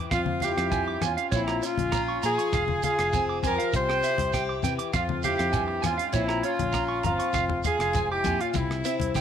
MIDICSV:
0, 0, Header, 1, 9, 480
1, 0, Start_track
1, 0, Key_signature, -4, "minor"
1, 0, Tempo, 602410
1, 92, Time_signature, 4, 2, 24, 8
1, 7338, End_track
2, 0, Start_track
2, 0, Title_t, "Clean electric guitar"
2, 0, Program_c, 0, 27
2, 88, Note_on_c, 0, 77, 73
2, 163, Note_off_c, 0, 77, 0
2, 333, Note_on_c, 0, 77, 73
2, 407, Note_off_c, 0, 77, 0
2, 457, Note_on_c, 0, 77, 66
2, 528, Note_off_c, 0, 77, 0
2, 570, Note_on_c, 0, 80, 76
2, 644, Note_off_c, 0, 80, 0
2, 698, Note_on_c, 0, 86, 70
2, 768, Note_off_c, 0, 86, 0
2, 812, Note_on_c, 0, 80, 68
2, 886, Note_off_c, 0, 80, 0
2, 933, Note_on_c, 0, 77, 64
2, 1005, Note_off_c, 0, 77, 0
2, 1047, Note_on_c, 0, 73, 67
2, 1122, Note_off_c, 0, 73, 0
2, 1173, Note_on_c, 0, 82, 61
2, 1245, Note_off_c, 0, 82, 0
2, 1529, Note_on_c, 0, 82, 75
2, 1604, Note_off_c, 0, 82, 0
2, 1661, Note_on_c, 0, 85, 65
2, 1730, Note_off_c, 0, 85, 0
2, 1779, Note_on_c, 0, 82, 75
2, 1851, Note_off_c, 0, 82, 0
2, 1898, Note_on_c, 0, 85, 66
2, 1968, Note_off_c, 0, 85, 0
2, 2026, Note_on_c, 0, 77, 81
2, 2096, Note_off_c, 0, 77, 0
2, 2264, Note_on_c, 0, 77, 72
2, 2334, Note_off_c, 0, 77, 0
2, 2388, Note_on_c, 0, 77, 64
2, 2456, Note_off_c, 0, 77, 0
2, 2506, Note_on_c, 0, 80, 77
2, 2575, Note_off_c, 0, 80, 0
2, 2625, Note_on_c, 0, 86, 73
2, 2693, Note_off_c, 0, 86, 0
2, 2736, Note_on_c, 0, 80, 72
2, 2809, Note_off_c, 0, 80, 0
2, 2855, Note_on_c, 0, 77, 65
2, 2926, Note_off_c, 0, 77, 0
2, 3098, Note_on_c, 0, 79, 68
2, 3168, Note_off_c, 0, 79, 0
2, 3218, Note_on_c, 0, 76, 69
2, 3290, Note_off_c, 0, 76, 0
2, 3454, Note_on_c, 0, 79, 82
2, 3527, Note_off_c, 0, 79, 0
2, 3579, Note_on_c, 0, 86, 69
2, 3649, Note_off_c, 0, 86, 0
2, 3695, Note_on_c, 0, 79, 71
2, 3768, Note_off_c, 0, 79, 0
2, 3814, Note_on_c, 0, 86, 71
2, 3886, Note_off_c, 0, 86, 0
2, 3931, Note_on_c, 0, 77, 78
2, 4005, Note_off_c, 0, 77, 0
2, 4176, Note_on_c, 0, 77, 73
2, 4249, Note_off_c, 0, 77, 0
2, 4287, Note_on_c, 0, 77, 66
2, 4361, Note_off_c, 0, 77, 0
2, 4404, Note_on_c, 0, 80, 75
2, 4480, Note_off_c, 0, 80, 0
2, 4639, Note_on_c, 0, 80, 74
2, 4717, Note_off_c, 0, 80, 0
2, 4763, Note_on_c, 0, 77, 67
2, 4838, Note_off_c, 0, 77, 0
2, 4884, Note_on_c, 0, 73, 70
2, 4960, Note_off_c, 0, 73, 0
2, 5006, Note_on_c, 0, 82, 69
2, 5080, Note_off_c, 0, 82, 0
2, 5125, Note_on_c, 0, 73, 69
2, 5201, Note_off_c, 0, 73, 0
2, 5365, Note_on_c, 0, 82, 75
2, 5441, Note_off_c, 0, 82, 0
2, 5486, Note_on_c, 0, 85, 69
2, 5560, Note_off_c, 0, 85, 0
2, 5606, Note_on_c, 0, 82, 70
2, 5682, Note_off_c, 0, 82, 0
2, 5731, Note_on_c, 0, 85, 70
2, 5803, Note_off_c, 0, 85, 0
2, 5852, Note_on_c, 0, 77, 76
2, 5926, Note_off_c, 0, 77, 0
2, 6100, Note_on_c, 0, 77, 71
2, 6171, Note_off_c, 0, 77, 0
2, 6225, Note_on_c, 0, 77, 64
2, 6293, Note_off_c, 0, 77, 0
2, 6344, Note_on_c, 0, 80, 74
2, 6414, Note_off_c, 0, 80, 0
2, 6467, Note_on_c, 0, 86, 72
2, 6535, Note_off_c, 0, 86, 0
2, 6581, Note_on_c, 0, 80, 67
2, 6652, Note_off_c, 0, 80, 0
2, 6702, Note_on_c, 0, 77, 66
2, 6771, Note_off_c, 0, 77, 0
2, 7057, Note_on_c, 0, 76, 65
2, 7129, Note_off_c, 0, 76, 0
2, 7301, Note_on_c, 0, 79, 73
2, 7338, Note_off_c, 0, 79, 0
2, 7338, End_track
3, 0, Start_track
3, 0, Title_t, "Horn section"
3, 0, Program_c, 1, 61
3, 96, Note_on_c, 1, 65, 78
3, 98, Note_on_c, 1, 60, 63
3, 318, Note_off_c, 1, 60, 0
3, 318, Note_off_c, 1, 65, 0
3, 343, Note_on_c, 1, 64, 71
3, 344, Note_on_c, 1, 67, 84
3, 818, Note_off_c, 1, 64, 0
3, 818, Note_off_c, 1, 67, 0
3, 826, Note_on_c, 1, 61, 59
3, 827, Note_on_c, 1, 65, 73
3, 1043, Note_off_c, 1, 61, 0
3, 1043, Note_off_c, 1, 65, 0
3, 1066, Note_on_c, 1, 60, 67
3, 1073, Note_on_c, 1, 64, 83
3, 1283, Note_off_c, 1, 60, 0
3, 1287, Note_off_c, 1, 64, 0
3, 1304, Note_on_c, 1, 61, 70
3, 1310, Note_on_c, 1, 65, 93
3, 1770, Note_off_c, 1, 65, 0
3, 1778, Note_off_c, 1, 61, 0
3, 1780, Note_on_c, 1, 65, 73
3, 1787, Note_on_c, 1, 68, 97
3, 2224, Note_off_c, 1, 65, 0
3, 2228, Note_off_c, 1, 68, 0
3, 2255, Note_on_c, 1, 65, 76
3, 2260, Note_on_c, 1, 68, 95
3, 2702, Note_off_c, 1, 65, 0
3, 2704, Note_off_c, 1, 68, 0
3, 2739, Note_on_c, 1, 67, 74
3, 2743, Note_on_c, 1, 70, 93
3, 2959, Note_off_c, 1, 67, 0
3, 2961, Note_off_c, 1, 70, 0
3, 2989, Note_on_c, 1, 72, 105
3, 2990, Note_on_c, 1, 67, 82
3, 3669, Note_off_c, 1, 67, 0
3, 3669, Note_off_c, 1, 72, 0
3, 3937, Note_on_c, 1, 65, 83
3, 3941, Note_on_c, 1, 60, 67
3, 4158, Note_off_c, 1, 65, 0
3, 4160, Note_off_c, 1, 60, 0
3, 4172, Note_on_c, 1, 67, 90
3, 4176, Note_on_c, 1, 64, 66
3, 4620, Note_off_c, 1, 67, 0
3, 4622, Note_off_c, 1, 64, 0
3, 4652, Note_on_c, 1, 61, 57
3, 4655, Note_on_c, 1, 65, 79
3, 4875, Note_off_c, 1, 61, 0
3, 4877, Note_off_c, 1, 65, 0
3, 4887, Note_on_c, 1, 64, 88
3, 4892, Note_on_c, 1, 60, 68
3, 5112, Note_off_c, 1, 64, 0
3, 5115, Note_off_c, 1, 60, 0
3, 5124, Note_on_c, 1, 65, 92
3, 5125, Note_on_c, 1, 61, 71
3, 5603, Note_off_c, 1, 65, 0
3, 5609, Note_off_c, 1, 61, 0
3, 5613, Note_on_c, 1, 65, 94
3, 5617, Note_on_c, 1, 60, 74
3, 6061, Note_off_c, 1, 65, 0
3, 6062, Note_off_c, 1, 60, 0
3, 6102, Note_on_c, 1, 68, 103
3, 6105, Note_on_c, 1, 65, 78
3, 6451, Note_on_c, 1, 67, 91
3, 6457, Note_on_c, 1, 64, 70
3, 6459, Note_off_c, 1, 68, 0
3, 6460, Note_off_c, 1, 65, 0
3, 6675, Note_off_c, 1, 67, 0
3, 6679, Note_off_c, 1, 64, 0
3, 6697, Note_on_c, 1, 65, 79
3, 6701, Note_on_c, 1, 61, 62
3, 6813, Note_off_c, 1, 65, 0
3, 6816, Note_off_c, 1, 61, 0
3, 6817, Note_on_c, 1, 64, 84
3, 6823, Note_on_c, 1, 60, 70
3, 7338, Note_off_c, 1, 60, 0
3, 7338, Note_off_c, 1, 64, 0
3, 7338, End_track
4, 0, Start_track
4, 0, Title_t, "Steel-string acoustic guitar"
4, 0, Program_c, 2, 25
4, 0, Note_on_c, 2, 52, 58
4, 92, Note_off_c, 2, 52, 0
4, 97, Note_on_c, 2, 41, 66
4, 349, Note_on_c, 2, 60, 54
4, 573, Note_off_c, 2, 41, 0
4, 576, Note_on_c, 2, 43, 58
4, 814, Note_off_c, 2, 43, 0
4, 1062, Note_on_c, 2, 46, 65
4, 1303, Note_off_c, 2, 60, 0
4, 1306, Note_on_c, 2, 61, 51
4, 1539, Note_off_c, 2, 61, 0
4, 1549, Note_on_c, 2, 61, 59
4, 1783, Note_on_c, 2, 53, 61
4, 1990, Note_off_c, 2, 53, 0
4, 1992, Note_off_c, 2, 61, 0
4, 2017, Note_off_c, 2, 46, 0
4, 2504, Note_on_c, 2, 60, 59
4, 2742, Note_on_c, 2, 53, 62
4, 2949, Note_off_c, 2, 53, 0
4, 2985, Note_on_c, 2, 48, 70
4, 3222, Note_off_c, 2, 60, 0
4, 3225, Note_on_c, 2, 64, 55
4, 3463, Note_on_c, 2, 67, 68
4, 3698, Note_on_c, 2, 52, 57
4, 3699, Note_off_c, 2, 48, 0
4, 3907, Note_off_c, 2, 52, 0
4, 3909, Note_off_c, 2, 67, 0
4, 3911, Note_off_c, 2, 64, 0
4, 3938, Note_on_c, 2, 41, 69
4, 4178, Note_on_c, 2, 60, 55
4, 4402, Note_off_c, 2, 41, 0
4, 4406, Note_on_c, 2, 43, 65
4, 4647, Note_off_c, 2, 43, 0
4, 4650, Note_on_c, 2, 44, 64
4, 4881, Note_on_c, 2, 46, 65
4, 4891, Note_off_c, 2, 44, 0
4, 5126, Note_off_c, 2, 60, 0
4, 5129, Note_on_c, 2, 61, 57
4, 5365, Note_off_c, 2, 61, 0
4, 5374, Note_on_c, 2, 61, 60
4, 5604, Note_on_c, 2, 53, 59
4, 5820, Note_off_c, 2, 53, 0
4, 5825, Note_off_c, 2, 61, 0
4, 5845, Note_on_c, 2, 41, 67
4, 5847, Note_off_c, 2, 46, 0
4, 6317, Note_off_c, 2, 41, 0
4, 6321, Note_on_c, 2, 44, 62
4, 6566, Note_off_c, 2, 44, 0
4, 6566, Note_on_c, 2, 46, 58
4, 6798, Note_off_c, 2, 46, 0
4, 6801, Note_on_c, 2, 48, 64
4, 7050, Note_on_c, 2, 60, 56
4, 7276, Note_off_c, 2, 60, 0
4, 7286, Note_on_c, 2, 60, 59
4, 7338, Note_off_c, 2, 48, 0
4, 7338, Note_off_c, 2, 60, 0
4, 7338, End_track
5, 0, Start_track
5, 0, Title_t, "Fingered electric bass"
5, 0, Program_c, 3, 33
5, 89, Note_on_c, 3, 41, 91
5, 421, Note_off_c, 3, 41, 0
5, 456, Note_on_c, 3, 41, 92
5, 782, Note_off_c, 3, 41, 0
5, 811, Note_on_c, 3, 40, 80
5, 922, Note_off_c, 3, 40, 0
5, 1051, Note_on_c, 3, 34, 86
5, 1270, Note_off_c, 3, 34, 0
5, 1413, Note_on_c, 3, 34, 79
5, 1740, Note_off_c, 3, 34, 0
5, 1779, Note_on_c, 3, 46, 81
5, 1887, Note_off_c, 3, 46, 0
5, 2017, Note_on_c, 3, 29, 86
5, 2233, Note_off_c, 3, 29, 0
5, 2380, Note_on_c, 3, 29, 89
5, 2703, Note_off_c, 3, 29, 0
5, 2738, Note_on_c, 3, 41, 92
5, 2846, Note_off_c, 3, 41, 0
5, 2977, Note_on_c, 3, 36, 88
5, 3193, Note_off_c, 3, 36, 0
5, 3339, Note_on_c, 3, 36, 81
5, 3663, Note_off_c, 3, 36, 0
5, 3697, Note_on_c, 3, 48, 85
5, 3806, Note_off_c, 3, 48, 0
5, 3933, Note_on_c, 3, 41, 97
5, 4263, Note_off_c, 3, 41, 0
5, 4297, Note_on_c, 3, 41, 94
5, 4622, Note_off_c, 3, 41, 0
5, 4652, Note_on_c, 3, 40, 80
5, 4763, Note_off_c, 3, 40, 0
5, 4891, Note_on_c, 3, 34, 97
5, 5109, Note_off_c, 3, 34, 0
5, 5253, Note_on_c, 3, 34, 80
5, 5580, Note_off_c, 3, 34, 0
5, 5608, Note_on_c, 3, 31, 84
5, 5721, Note_off_c, 3, 31, 0
5, 5852, Note_on_c, 3, 29, 94
5, 6070, Note_off_c, 3, 29, 0
5, 6206, Note_on_c, 3, 29, 90
5, 6536, Note_off_c, 3, 29, 0
5, 6570, Note_on_c, 3, 41, 88
5, 6681, Note_off_c, 3, 41, 0
5, 6812, Note_on_c, 3, 36, 79
5, 7030, Note_off_c, 3, 36, 0
5, 7172, Note_on_c, 3, 36, 79
5, 7338, Note_off_c, 3, 36, 0
5, 7338, End_track
6, 0, Start_track
6, 0, Title_t, "Muted clean electric guitar strokes"
6, 1296, Note_on_c, 9, 29, 66
6, 1376, Note_off_c, 9, 29, 0
6, 2984, Note_on_c, 9, 29, 71
6, 3063, Note_off_c, 9, 29, 0
6, 4525, Note_on_c, 9, 29, 74
6, 4605, Note_off_c, 9, 29, 0
6, 6821, Note_on_c, 9, 29, 74
6, 6900, Note_off_c, 9, 29, 0
6, 7338, End_track
7, 0, Start_track
7, 0, Title_t, "Muted steel-string acoustic guitar strokes"
7, 2023, Note_on_c, 9, 29, 67
7, 2103, Note_off_c, 9, 29, 0
7, 2269, Note_on_c, 9, 29, 56
7, 2349, Note_off_c, 9, 29, 0
7, 7338, End_track
8, 0, Start_track
8, 0, Title_t, "Shekere"
8, 98, Note_on_c, 9, 82, 76
8, 178, Note_off_c, 9, 82, 0
8, 337, Note_on_c, 9, 82, 61
8, 417, Note_off_c, 9, 82, 0
8, 576, Note_on_c, 9, 82, 74
8, 656, Note_off_c, 9, 82, 0
8, 818, Note_on_c, 9, 82, 65
8, 898, Note_off_c, 9, 82, 0
8, 1054, Note_on_c, 9, 82, 85
8, 1133, Note_off_c, 9, 82, 0
8, 1295, Note_on_c, 9, 82, 65
8, 1375, Note_off_c, 9, 82, 0
8, 1537, Note_on_c, 9, 82, 91
8, 1617, Note_off_c, 9, 82, 0
8, 1773, Note_on_c, 9, 82, 68
8, 1853, Note_off_c, 9, 82, 0
8, 2011, Note_on_c, 9, 82, 89
8, 2091, Note_off_c, 9, 82, 0
8, 2250, Note_on_c, 9, 82, 69
8, 2329, Note_off_c, 9, 82, 0
8, 2493, Note_on_c, 9, 82, 90
8, 2573, Note_off_c, 9, 82, 0
8, 2739, Note_on_c, 9, 82, 68
8, 2818, Note_off_c, 9, 82, 0
8, 2971, Note_on_c, 9, 82, 91
8, 3051, Note_off_c, 9, 82, 0
8, 3210, Note_on_c, 9, 82, 61
8, 3290, Note_off_c, 9, 82, 0
8, 3449, Note_on_c, 9, 82, 89
8, 3528, Note_off_c, 9, 82, 0
8, 3691, Note_on_c, 9, 82, 69
8, 3770, Note_off_c, 9, 82, 0
8, 3933, Note_on_c, 9, 82, 84
8, 4012, Note_off_c, 9, 82, 0
8, 4168, Note_on_c, 9, 82, 68
8, 4248, Note_off_c, 9, 82, 0
8, 4405, Note_on_c, 9, 82, 82
8, 4485, Note_off_c, 9, 82, 0
8, 4647, Note_on_c, 9, 82, 69
8, 4726, Note_off_c, 9, 82, 0
8, 4886, Note_on_c, 9, 82, 91
8, 4965, Note_off_c, 9, 82, 0
8, 5360, Note_on_c, 9, 82, 83
8, 5439, Note_off_c, 9, 82, 0
8, 5841, Note_on_c, 9, 82, 78
8, 5921, Note_off_c, 9, 82, 0
8, 6083, Note_on_c, 9, 82, 65
8, 6162, Note_off_c, 9, 82, 0
8, 6328, Note_on_c, 9, 82, 78
8, 6408, Note_off_c, 9, 82, 0
8, 6568, Note_on_c, 9, 82, 67
8, 6648, Note_off_c, 9, 82, 0
8, 6803, Note_on_c, 9, 82, 84
8, 6882, Note_off_c, 9, 82, 0
8, 7047, Note_on_c, 9, 82, 66
8, 7126, Note_off_c, 9, 82, 0
8, 7292, Note_on_c, 9, 82, 88
8, 7338, Note_off_c, 9, 82, 0
8, 7338, End_track
9, 0, Start_track
9, 0, Title_t, "Drums"
9, 90, Note_on_c, 9, 36, 79
9, 93, Note_on_c, 9, 37, 62
9, 93, Note_on_c, 9, 42, 45
9, 169, Note_off_c, 9, 36, 0
9, 173, Note_off_c, 9, 37, 0
9, 173, Note_off_c, 9, 42, 0
9, 205, Note_on_c, 9, 63, 76
9, 285, Note_off_c, 9, 63, 0
9, 321, Note_on_c, 9, 63, 66
9, 336, Note_on_c, 9, 42, 52
9, 400, Note_off_c, 9, 63, 0
9, 415, Note_off_c, 9, 42, 0
9, 460, Note_on_c, 9, 37, 61
9, 460, Note_on_c, 9, 42, 46
9, 539, Note_off_c, 9, 37, 0
9, 539, Note_off_c, 9, 42, 0
9, 570, Note_on_c, 9, 64, 59
9, 571, Note_on_c, 9, 36, 67
9, 575, Note_on_c, 9, 42, 43
9, 650, Note_off_c, 9, 64, 0
9, 651, Note_off_c, 9, 36, 0
9, 655, Note_off_c, 9, 42, 0
9, 808, Note_on_c, 9, 64, 67
9, 810, Note_on_c, 9, 37, 66
9, 810, Note_on_c, 9, 42, 48
9, 887, Note_off_c, 9, 64, 0
9, 890, Note_off_c, 9, 37, 0
9, 890, Note_off_c, 9, 42, 0
9, 938, Note_on_c, 9, 42, 43
9, 1017, Note_off_c, 9, 42, 0
9, 1053, Note_on_c, 9, 36, 75
9, 1055, Note_on_c, 9, 42, 43
9, 1133, Note_off_c, 9, 36, 0
9, 1134, Note_off_c, 9, 42, 0
9, 1178, Note_on_c, 9, 37, 65
9, 1257, Note_off_c, 9, 37, 0
9, 1299, Note_on_c, 9, 42, 49
9, 1379, Note_off_c, 9, 42, 0
9, 1415, Note_on_c, 9, 63, 72
9, 1425, Note_on_c, 9, 42, 44
9, 1494, Note_off_c, 9, 63, 0
9, 1504, Note_off_c, 9, 42, 0
9, 1531, Note_on_c, 9, 37, 63
9, 1531, Note_on_c, 9, 42, 47
9, 1533, Note_on_c, 9, 36, 63
9, 1611, Note_off_c, 9, 37, 0
9, 1611, Note_off_c, 9, 42, 0
9, 1613, Note_off_c, 9, 36, 0
9, 1779, Note_on_c, 9, 42, 46
9, 1859, Note_off_c, 9, 42, 0
9, 1903, Note_on_c, 9, 42, 48
9, 1983, Note_off_c, 9, 42, 0
9, 2016, Note_on_c, 9, 36, 78
9, 2018, Note_on_c, 9, 37, 64
9, 2018, Note_on_c, 9, 42, 43
9, 2095, Note_off_c, 9, 36, 0
9, 2097, Note_off_c, 9, 37, 0
9, 2097, Note_off_c, 9, 42, 0
9, 2135, Note_on_c, 9, 63, 73
9, 2214, Note_off_c, 9, 63, 0
9, 2257, Note_on_c, 9, 63, 66
9, 2258, Note_on_c, 9, 42, 51
9, 2337, Note_off_c, 9, 63, 0
9, 2338, Note_off_c, 9, 42, 0
9, 2380, Note_on_c, 9, 37, 64
9, 2380, Note_on_c, 9, 42, 44
9, 2460, Note_off_c, 9, 37, 0
9, 2460, Note_off_c, 9, 42, 0
9, 2497, Note_on_c, 9, 36, 62
9, 2499, Note_on_c, 9, 64, 62
9, 2500, Note_on_c, 9, 42, 45
9, 2577, Note_off_c, 9, 36, 0
9, 2578, Note_off_c, 9, 64, 0
9, 2580, Note_off_c, 9, 42, 0
9, 2732, Note_on_c, 9, 64, 71
9, 2738, Note_on_c, 9, 36, 65
9, 2743, Note_on_c, 9, 42, 51
9, 2812, Note_off_c, 9, 64, 0
9, 2818, Note_off_c, 9, 36, 0
9, 2822, Note_off_c, 9, 42, 0
9, 2866, Note_on_c, 9, 42, 48
9, 2946, Note_off_c, 9, 42, 0
9, 2977, Note_on_c, 9, 36, 83
9, 2979, Note_on_c, 9, 42, 48
9, 3057, Note_off_c, 9, 36, 0
9, 3059, Note_off_c, 9, 42, 0
9, 3104, Note_on_c, 9, 37, 64
9, 3184, Note_off_c, 9, 37, 0
9, 3218, Note_on_c, 9, 42, 53
9, 3298, Note_off_c, 9, 42, 0
9, 3331, Note_on_c, 9, 63, 76
9, 3341, Note_on_c, 9, 42, 50
9, 3411, Note_off_c, 9, 63, 0
9, 3420, Note_off_c, 9, 42, 0
9, 3456, Note_on_c, 9, 36, 66
9, 3460, Note_on_c, 9, 37, 63
9, 3460, Note_on_c, 9, 42, 50
9, 3536, Note_off_c, 9, 36, 0
9, 3540, Note_off_c, 9, 37, 0
9, 3540, Note_off_c, 9, 42, 0
9, 3688, Note_on_c, 9, 64, 71
9, 3702, Note_on_c, 9, 42, 52
9, 3768, Note_off_c, 9, 64, 0
9, 3781, Note_off_c, 9, 42, 0
9, 3817, Note_on_c, 9, 42, 52
9, 3897, Note_off_c, 9, 42, 0
9, 3932, Note_on_c, 9, 37, 62
9, 3932, Note_on_c, 9, 42, 48
9, 3934, Note_on_c, 9, 36, 84
9, 4011, Note_off_c, 9, 37, 0
9, 4011, Note_off_c, 9, 42, 0
9, 4013, Note_off_c, 9, 36, 0
9, 4055, Note_on_c, 9, 63, 79
9, 4135, Note_off_c, 9, 63, 0
9, 4176, Note_on_c, 9, 63, 70
9, 4178, Note_on_c, 9, 42, 50
9, 4256, Note_off_c, 9, 63, 0
9, 4257, Note_off_c, 9, 42, 0
9, 4297, Note_on_c, 9, 37, 60
9, 4297, Note_on_c, 9, 42, 49
9, 4377, Note_off_c, 9, 37, 0
9, 4377, Note_off_c, 9, 42, 0
9, 4410, Note_on_c, 9, 64, 63
9, 4412, Note_on_c, 9, 36, 70
9, 4413, Note_on_c, 9, 42, 52
9, 4489, Note_off_c, 9, 64, 0
9, 4492, Note_off_c, 9, 36, 0
9, 4492, Note_off_c, 9, 42, 0
9, 4650, Note_on_c, 9, 64, 75
9, 4653, Note_on_c, 9, 37, 66
9, 4653, Note_on_c, 9, 42, 50
9, 4729, Note_off_c, 9, 64, 0
9, 4732, Note_off_c, 9, 37, 0
9, 4732, Note_off_c, 9, 42, 0
9, 4775, Note_on_c, 9, 42, 47
9, 4855, Note_off_c, 9, 42, 0
9, 4889, Note_on_c, 9, 42, 47
9, 4890, Note_on_c, 9, 36, 78
9, 4969, Note_off_c, 9, 42, 0
9, 4970, Note_off_c, 9, 36, 0
9, 5011, Note_on_c, 9, 37, 68
9, 5090, Note_off_c, 9, 37, 0
9, 5128, Note_on_c, 9, 42, 51
9, 5207, Note_off_c, 9, 42, 0
9, 5253, Note_on_c, 9, 63, 76
9, 5254, Note_on_c, 9, 42, 43
9, 5333, Note_off_c, 9, 63, 0
9, 5334, Note_off_c, 9, 42, 0
9, 5370, Note_on_c, 9, 36, 64
9, 5371, Note_on_c, 9, 37, 65
9, 5371, Note_on_c, 9, 42, 46
9, 5450, Note_off_c, 9, 36, 0
9, 5450, Note_off_c, 9, 37, 0
9, 5450, Note_off_c, 9, 42, 0
9, 5612, Note_on_c, 9, 64, 80
9, 5613, Note_on_c, 9, 42, 47
9, 5692, Note_off_c, 9, 64, 0
9, 5693, Note_off_c, 9, 42, 0
9, 5735, Note_on_c, 9, 42, 46
9, 5815, Note_off_c, 9, 42, 0
9, 5850, Note_on_c, 9, 37, 66
9, 5850, Note_on_c, 9, 42, 42
9, 5851, Note_on_c, 9, 36, 78
9, 5930, Note_off_c, 9, 37, 0
9, 5930, Note_off_c, 9, 42, 0
9, 5931, Note_off_c, 9, 36, 0
9, 5972, Note_on_c, 9, 63, 82
9, 6052, Note_off_c, 9, 63, 0
9, 6093, Note_on_c, 9, 63, 66
9, 6093, Note_on_c, 9, 64, 69
9, 6094, Note_on_c, 9, 42, 50
9, 6172, Note_off_c, 9, 63, 0
9, 6172, Note_off_c, 9, 64, 0
9, 6174, Note_off_c, 9, 42, 0
9, 6215, Note_on_c, 9, 37, 63
9, 6215, Note_on_c, 9, 42, 43
9, 6295, Note_off_c, 9, 37, 0
9, 6295, Note_off_c, 9, 42, 0
9, 6332, Note_on_c, 9, 36, 68
9, 6334, Note_on_c, 9, 42, 47
9, 6334, Note_on_c, 9, 64, 64
9, 6412, Note_off_c, 9, 36, 0
9, 6413, Note_off_c, 9, 64, 0
9, 6414, Note_off_c, 9, 42, 0
9, 6567, Note_on_c, 9, 64, 72
9, 6572, Note_on_c, 9, 36, 61
9, 6574, Note_on_c, 9, 42, 50
9, 6646, Note_off_c, 9, 64, 0
9, 6652, Note_off_c, 9, 36, 0
9, 6654, Note_off_c, 9, 42, 0
9, 6697, Note_on_c, 9, 42, 46
9, 6777, Note_off_c, 9, 42, 0
9, 6807, Note_on_c, 9, 63, 68
9, 6813, Note_on_c, 9, 36, 84
9, 6815, Note_on_c, 9, 42, 49
9, 6887, Note_off_c, 9, 63, 0
9, 6892, Note_off_c, 9, 36, 0
9, 6895, Note_off_c, 9, 42, 0
9, 6939, Note_on_c, 9, 37, 66
9, 7019, Note_off_c, 9, 37, 0
9, 7060, Note_on_c, 9, 42, 52
9, 7140, Note_off_c, 9, 42, 0
9, 7168, Note_on_c, 9, 63, 69
9, 7182, Note_on_c, 9, 42, 48
9, 7248, Note_off_c, 9, 63, 0
9, 7262, Note_off_c, 9, 42, 0
9, 7291, Note_on_c, 9, 63, 50
9, 7292, Note_on_c, 9, 36, 69
9, 7298, Note_on_c, 9, 37, 67
9, 7298, Note_on_c, 9, 42, 51
9, 7338, Note_off_c, 9, 36, 0
9, 7338, Note_off_c, 9, 37, 0
9, 7338, Note_off_c, 9, 42, 0
9, 7338, Note_off_c, 9, 63, 0
9, 7338, End_track
0, 0, End_of_file